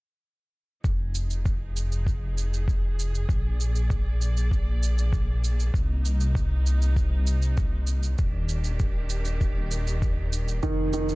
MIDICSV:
0, 0, Header, 1, 5, 480
1, 0, Start_track
1, 0, Tempo, 612245
1, 660, Time_signature, 4, 2, 24, 8
1, 8742, End_track
2, 0, Start_track
2, 0, Title_t, "String section"
2, 0, Program_c, 0, 48
2, 662, Note_on_c, 0, 53, 65
2, 665, Note_on_c, 0, 68, 76
2, 667, Note_on_c, 0, 63, 64
2, 2562, Note_off_c, 0, 53, 0
2, 2564, Note_off_c, 0, 63, 0
2, 2577, Note_on_c, 0, 74, 72
2, 2581, Note_on_c, 0, 58, 68
2, 4471, Note_off_c, 0, 68, 0
2, 4479, Note_off_c, 0, 74, 0
2, 4501, Note_on_c, 0, 48, 72
2, 4505, Note_on_c, 0, 63, 82
2, 6389, Note_off_c, 0, 58, 0
2, 6401, Note_off_c, 0, 48, 0
2, 6403, Note_off_c, 0, 63, 0
2, 6418, Note_on_c, 0, 51, 73
2, 6418, Note_on_c, 0, 67, 76
2, 6419, Note_on_c, 0, 62, 62
2, 8320, Note_off_c, 0, 51, 0
2, 8320, Note_off_c, 0, 62, 0
2, 8320, Note_off_c, 0, 67, 0
2, 8333, Note_on_c, 0, 53, 72
2, 8333, Note_on_c, 0, 68, 73
2, 8337, Note_on_c, 0, 63, 65
2, 8742, Note_off_c, 0, 53, 0
2, 8742, Note_off_c, 0, 63, 0
2, 8742, Note_off_c, 0, 68, 0
2, 8742, End_track
3, 0, Start_track
3, 0, Title_t, "Upright piano"
3, 0, Program_c, 1, 0
3, 8332, Note_on_c, 1, 51, 73
3, 8477, Control_c, 1, 64, 127
3, 8562, Note_off_c, 1, 51, 0
3, 8573, Note_on_c, 1, 51, 68
3, 8742, Note_off_c, 1, 51, 0
3, 8742, End_track
4, 0, Start_track
4, 0, Title_t, "Detuned saw bass"
4, 0, Program_c, 2, 39
4, 659, Note_on_c, 2, 29, 75
4, 2555, Note_off_c, 2, 29, 0
4, 2577, Note_on_c, 2, 34, 79
4, 4475, Note_off_c, 2, 34, 0
4, 4498, Note_on_c, 2, 36, 85
4, 6395, Note_off_c, 2, 36, 0
4, 6416, Note_on_c, 2, 27, 86
4, 8314, Note_off_c, 2, 27, 0
4, 8334, Note_on_c, 2, 29, 76
4, 8742, Note_off_c, 2, 29, 0
4, 8742, End_track
5, 0, Start_track
5, 0, Title_t, "Drums"
5, 661, Note_on_c, 9, 36, 88
5, 663, Note_on_c, 9, 82, 28
5, 739, Note_off_c, 9, 36, 0
5, 742, Note_off_c, 9, 82, 0
5, 899, Note_on_c, 9, 82, 59
5, 977, Note_off_c, 9, 82, 0
5, 1023, Note_on_c, 9, 82, 36
5, 1101, Note_off_c, 9, 82, 0
5, 1141, Note_on_c, 9, 36, 88
5, 1143, Note_on_c, 9, 82, 26
5, 1219, Note_off_c, 9, 36, 0
5, 1221, Note_off_c, 9, 82, 0
5, 1384, Note_on_c, 9, 82, 62
5, 1462, Note_off_c, 9, 82, 0
5, 1506, Note_on_c, 9, 82, 32
5, 1585, Note_off_c, 9, 82, 0
5, 1619, Note_on_c, 9, 36, 84
5, 1627, Note_on_c, 9, 82, 25
5, 1698, Note_off_c, 9, 36, 0
5, 1706, Note_off_c, 9, 82, 0
5, 1863, Note_on_c, 9, 82, 65
5, 1942, Note_off_c, 9, 82, 0
5, 1989, Note_on_c, 9, 82, 36
5, 2068, Note_off_c, 9, 82, 0
5, 2099, Note_on_c, 9, 36, 84
5, 2110, Note_on_c, 9, 82, 25
5, 2178, Note_off_c, 9, 36, 0
5, 2188, Note_off_c, 9, 82, 0
5, 2348, Note_on_c, 9, 82, 61
5, 2426, Note_off_c, 9, 82, 0
5, 2468, Note_on_c, 9, 82, 33
5, 2546, Note_off_c, 9, 82, 0
5, 2578, Note_on_c, 9, 36, 89
5, 2586, Note_on_c, 9, 82, 28
5, 2657, Note_off_c, 9, 36, 0
5, 2664, Note_off_c, 9, 82, 0
5, 2826, Note_on_c, 9, 82, 62
5, 2905, Note_off_c, 9, 82, 0
5, 2944, Note_on_c, 9, 82, 35
5, 3023, Note_off_c, 9, 82, 0
5, 3059, Note_on_c, 9, 36, 91
5, 3062, Note_on_c, 9, 82, 28
5, 3137, Note_off_c, 9, 36, 0
5, 3141, Note_off_c, 9, 82, 0
5, 3305, Note_on_c, 9, 82, 59
5, 3383, Note_off_c, 9, 82, 0
5, 3426, Note_on_c, 9, 82, 35
5, 3504, Note_off_c, 9, 82, 0
5, 3539, Note_on_c, 9, 36, 83
5, 3550, Note_on_c, 9, 82, 25
5, 3617, Note_off_c, 9, 36, 0
5, 3629, Note_off_c, 9, 82, 0
5, 3787, Note_on_c, 9, 82, 67
5, 3865, Note_off_c, 9, 82, 0
5, 3906, Note_on_c, 9, 82, 38
5, 3985, Note_off_c, 9, 82, 0
5, 4019, Note_on_c, 9, 36, 90
5, 4026, Note_on_c, 9, 82, 25
5, 4097, Note_off_c, 9, 36, 0
5, 4104, Note_off_c, 9, 82, 0
5, 4265, Note_on_c, 9, 82, 59
5, 4344, Note_off_c, 9, 82, 0
5, 4389, Note_on_c, 9, 82, 34
5, 4467, Note_off_c, 9, 82, 0
5, 4500, Note_on_c, 9, 36, 92
5, 4508, Note_on_c, 9, 82, 26
5, 4578, Note_off_c, 9, 36, 0
5, 4586, Note_off_c, 9, 82, 0
5, 4745, Note_on_c, 9, 82, 62
5, 4823, Note_off_c, 9, 82, 0
5, 4864, Note_on_c, 9, 82, 39
5, 4942, Note_off_c, 9, 82, 0
5, 4979, Note_on_c, 9, 36, 91
5, 4988, Note_on_c, 9, 82, 28
5, 5058, Note_off_c, 9, 36, 0
5, 5067, Note_off_c, 9, 82, 0
5, 5226, Note_on_c, 9, 82, 67
5, 5304, Note_off_c, 9, 82, 0
5, 5347, Note_on_c, 9, 82, 37
5, 5425, Note_off_c, 9, 82, 0
5, 5460, Note_on_c, 9, 36, 83
5, 5463, Note_on_c, 9, 82, 27
5, 5538, Note_off_c, 9, 36, 0
5, 5542, Note_off_c, 9, 82, 0
5, 5698, Note_on_c, 9, 82, 68
5, 5776, Note_off_c, 9, 82, 0
5, 5819, Note_on_c, 9, 82, 36
5, 5897, Note_off_c, 9, 82, 0
5, 5936, Note_on_c, 9, 82, 26
5, 5939, Note_on_c, 9, 36, 102
5, 6014, Note_off_c, 9, 82, 0
5, 6018, Note_off_c, 9, 36, 0
5, 6169, Note_on_c, 9, 82, 65
5, 6248, Note_off_c, 9, 82, 0
5, 6296, Note_on_c, 9, 82, 37
5, 6374, Note_off_c, 9, 82, 0
5, 6415, Note_on_c, 9, 82, 29
5, 6419, Note_on_c, 9, 36, 96
5, 6494, Note_off_c, 9, 82, 0
5, 6497, Note_off_c, 9, 36, 0
5, 6655, Note_on_c, 9, 82, 62
5, 6733, Note_off_c, 9, 82, 0
5, 6775, Note_on_c, 9, 82, 35
5, 6853, Note_off_c, 9, 82, 0
5, 6896, Note_on_c, 9, 82, 29
5, 6897, Note_on_c, 9, 36, 85
5, 6974, Note_off_c, 9, 82, 0
5, 6976, Note_off_c, 9, 36, 0
5, 7131, Note_on_c, 9, 82, 59
5, 7209, Note_off_c, 9, 82, 0
5, 7252, Note_on_c, 9, 82, 38
5, 7330, Note_off_c, 9, 82, 0
5, 7377, Note_on_c, 9, 36, 83
5, 7378, Note_on_c, 9, 82, 25
5, 7455, Note_off_c, 9, 36, 0
5, 7456, Note_off_c, 9, 82, 0
5, 7614, Note_on_c, 9, 82, 67
5, 7693, Note_off_c, 9, 82, 0
5, 7741, Note_on_c, 9, 82, 38
5, 7819, Note_off_c, 9, 82, 0
5, 7856, Note_on_c, 9, 36, 97
5, 7859, Note_on_c, 9, 82, 28
5, 7934, Note_off_c, 9, 36, 0
5, 7937, Note_off_c, 9, 82, 0
5, 8096, Note_on_c, 9, 82, 66
5, 8174, Note_off_c, 9, 82, 0
5, 8218, Note_on_c, 9, 82, 37
5, 8297, Note_off_c, 9, 82, 0
5, 8333, Note_on_c, 9, 82, 27
5, 8335, Note_on_c, 9, 36, 89
5, 8411, Note_off_c, 9, 82, 0
5, 8414, Note_off_c, 9, 36, 0
5, 8570, Note_on_c, 9, 82, 61
5, 8649, Note_off_c, 9, 82, 0
5, 8694, Note_on_c, 9, 82, 35
5, 8742, Note_off_c, 9, 82, 0
5, 8742, End_track
0, 0, End_of_file